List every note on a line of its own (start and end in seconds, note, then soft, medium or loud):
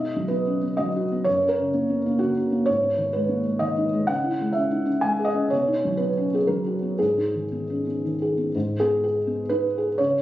0.00 1.21 B2 soft
0.00 0.24 D#4 soft
0.00 0.29 D#5 medium
0.16 0.41 F#3 soft
0.28 0.56 B3 soft
0.28 0.77 B4 medium
0.47 0.62 C#4 soft
0.63 0.88 B3 soft
0.77 1.04 F#3 soft
0.77 1.25 D#5 medium
0.96 1.21 F#4 soft
1.12 1.27 B3 soft
1.24 2.63 F#2 soft
1.24 1.49 C#5 medium
1.42 1.67 C#4 soft
1.49 2.19 A#4 medium
1.59 1.83 C#3 soft
1.74 1.99 A#3 soft
1.89 2.05 B3 soft
2.06 2.30 A#3 soft
2.19 2.45 C#3 soft
2.19 2.35 F#4 medium
2.37 2.61 F#4 soft
2.52 2.67 A#3 soft
2.66 4.05 G#2 soft
2.66 3.13 C#5 medium
2.83 3.08 B3 soft
2.97 3.23 D#3 soft
3.13 3.40 G#3 soft
3.13 3.61 B4 medium
3.29 3.45 A#3 soft
3.45 3.71 G#3 soft
3.59 3.86 D#3 soft
3.59 4.07 D#5 medium
3.77 4.02 D#4 soft
3.93 4.09 G#3 soft
4.07 5.47 C#3 soft
4.07 4.55 F#5 medium
4.24 4.49 E4 soft
4.41 4.66 G#3 soft
4.53 4.80 C#4 soft
4.53 5.02 E5 medium
4.71 4.87 D#4 soft
4.86 5.12 C#4 soft
5.01 5.28 G#3 soft
5.01 5.26 G#5 medium
5.19 5.45 G#4 soft
5.25 5.50 D#5 medium
5.34 5.51 C#4 soft
5.50 6.95 B2 soft
5.50 5.99 C#5 medium
5.68 5.93 D#4 soft
5.85 6.10 F#3 soft
5.97 6.25 B3 soft
5.97 6.35 B4 medium
6.17 6.32 C#4 soft
6.32 6.59 B3 soft
6.32 6.47 G#4 soft
6.47 6.75 F#3 soft
6.47 6.99 A#4 medium
6.66 6.93 F#4 soft
6.82 6.99 B3 soft
6.99 8.50 G#2 soft
6.99 8.03 G#4 medium
7.18 7.45 D#4 soft
7.35 7.62 D#3 soft
7.52 7.79 B3 soft
7.70 7.86 C#4 soft
7.86 8.13 B3 soft
8.05 8.31 D#3 soft
8.22 8.48 G#4 soft
8.37 8.54 B3 soft
8.55 9.95 G#2 soft
8.80 9.18 B3 soft
8.80 9.02 G#4 medium
9.04 9.42 G#4 soft
9.27 9.65 B3 soft
9.49 9.89 D#4 soft
9.49 9.98 B4 medium
9.78 10.00 G#4 soft
9.98 10.22 C#3 soft
9.98 10.22 C#5 medium